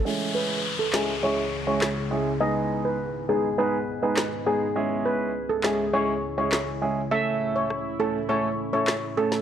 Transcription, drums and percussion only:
0.93 snare, clap
1.81 cross-stick, snare, clap
4.17 cross-stick, snare, clap
5.64 snare, clap
6.52 cross-stick, snare, clap
7.70 cross-stick
8.87 cross-stick, snare, clap
9.32 snare

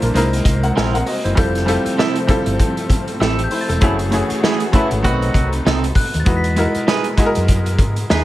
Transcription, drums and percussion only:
0.02 closed hi-hat
0.15 closed hi-hat
0.33 closed hi-hat
0.45 kick, closed hi-hat
0.63 closed hi-hat
0.77 snare
0.95 closed hi-hat
1.06 open hi-hat
1.26 closed hi-hat
1.37 kick, closed hi-hat
1.55 snare, closed hi-hat
1.68 closed hi-hat
1.86 closed hi-hat
1.99 snare
2.15 closed hi-hat
2.28 kick, closed hi-hat
2.46 closed hi-hat
2.59 kick, closed hi-hat
2.77 closed hi-hat
2.90 kick, closed hi-hat
3.08 closed hi-hat
3.22 snare
3.39 closed hi-hat
3.51 open hi-hat
3.69 closed hi-hat
3.81 kick, closed hi-hat
3.99 closed hi-hat
4.12 closed hi-hat
4.30 closed hi-hat
4.44 snare
4.60 closed hi-hat
4.73 kick, closed hi-hat
4.91 closed hi-hat
5.04 kick, closed hi-hat
5.22 closed hi-hat
5.34 kick, closed hi-hat
5.53 closed hi-hat
5.67 snare
5.84 closed hi-hat
5.95 kick, open hi-hat
6.14 closed hi-hat
6.26 kick, closed hi-hat
6.44 closed hi-hat
6.56 closed hi-hat
6.75 closed hi-hat
6.88 snare
7.04 closed hi-hat
7.18 kick, closed hi-hat
7.35 closed hi-hat
7.48 kick, closed hi-hat
7.66 closed hi-hat
7.79 kick, closed hi-hat
7.96 closed hi-hat
8.10 snare

